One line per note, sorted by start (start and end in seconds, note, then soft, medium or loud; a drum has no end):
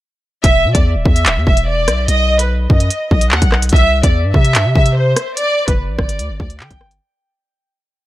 0.44 0.66 E1 loud
0.44 0.73 E5 loud
0.44 kick loud
0.44 closed hi-hat medium
0.64 0.74 B2 loud
0.74 0.97 E2 loud
0.74 0.84 D5 medium
0.74 kick medium
0.74 closed hi-hat medium
0.95 1.05 D1 loud
1.05 1.28 E2 loud
1.05 1.44 E5 medium
1.05 kick loud
1.16 closed hi-hat medium
1.26 1.38 D1 loud
1.26 clap loud
1.26 closed hi-hat medium
1.36 1.46 E2 loud
1.47 1.89 E1 loud
1.47 1.65 E5 medium
1.47 kick loud
1.57 closed hi-hat medium
1.67 2.06 D5 medium
1.88 2.07 B1 loud
1.88 cross-stick medium
1.88 closed hi-hat medium
2.08 2.67 B1 loud
2.08 2.37 D#5 loud
2.08 closed hi-hat medium
2.39 2.48 B4 medium
2.39 closed hi-hat medium
2.70 2.90 F#2 loud
2.70 3.08 D#5 medium
2.70 kick medium
2.80 closed hi-hat medium
2.90 closed hi-hat medium
3.11 3.33 B1 loud
3.11 3.29 D#5 medium
3.11 kick medium
3.21 closed hi-hat medium
3.31 3.41 D#2 loud
3.31 3.50 F#5 medium
3.31 clap loud
3.42 3.71 B1 loud
3.42 kick loud
3.42 closed hi-hat medium
3.52 cross-stick medium
3.52 clap medium
3.62 closed hi-hat medium
3.69 4.02 C2 loud
3.69 4.02 E5 loud
3.69 kick loud
3.69 closed hi-hat medium
3.76 closed hi-hat soft
4.03 4.26 E2 loud
4.03 4.12 D5 medium
4.03 kick medium
4.03 closed hi-hat medium
4.24 4.34 G2 loud
4.34 4.56 C3 loud
4.34 4.73 E5 medium
4.34 kick loud
4.45 closed hi-hat medium
4.55 4.67 G2 loud
4.55 clap loud
4.55 closed hi-hat medium
4.65 4.75 C3 loud
4.75 5.15 C3 loud
4.75 4.93 E5 medium
4.75 kick loud
4.86 closed hi-hat medium
4.96 5.35 C5 medium
5.16 cross-stick medium
5.16 closed hi-hat medium
5.37 5.66 D5 loud
5.37 closed hi-hat medium
5.68 5.90 F#1 loud
5.68 5.77 B4 medium
5.68 kick medium
5.68 closed hi-hat medium
5.88 5.98 A1 loud
5.99 6.21 G1 loud
5.99 6.37 D5 medium
5.99 kick medium
5.99 cross-stick medium
6.09 closed hi-hat medium
6.19 6.31 D2 loud
6.19 closed hi-hat medium
6.30 6.39 G1 loud
6.40 6.62 D2 loud
6.40 6.58 D5 medium
6.40 kick medium
6.50 closed hi-hat medium
6.60 6.70 D3 loud
6.60 6.78 G5 medium
6.60 clap loud
6.71 7.00 G1 loud
6.71 kick loud
6.71 closed hi-hat medium
6.81 cross-stick medium
6.91 closed hi-hat medium